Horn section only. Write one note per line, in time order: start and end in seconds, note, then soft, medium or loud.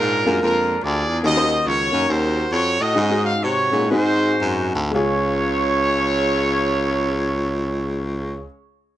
0.00 0.38 D4 medium
0.00 0.38 F4 medium
0.00 0.42 A#4 loud
0.42 1.21 D4 medium
0.42 0.83 F4 medium
0.42 0.81 A#4 medium
0.84 1.22 F4 medium
0.84 1.22 G#4 medium
0.84 1.17 D5 loud
1.25 1.66 F#4 medium
1.25 1.66 A#4 medium
1.25 1.64 D#5 loud
1.67 2.09 F#4 medium
1.67 2.48 A#4 medium
1.67 2.09 C#5 loud
2.10 2.80 F#4 medium
2.10 2.52 C5 loud
2.51 2.80 C#5 loud
2.81 3.42 F#4 medium
2.81 3.26 D#5 loud
3.25 3.41 F5 loud
3.43 3.88 F#4 medium
3.43 3.91 C#5 loud
3.90 4.78 D#4 medium
3.90 4.78 F#4 medium
3.90 4.71 C5 loud
4.95 8.45 C#5 loud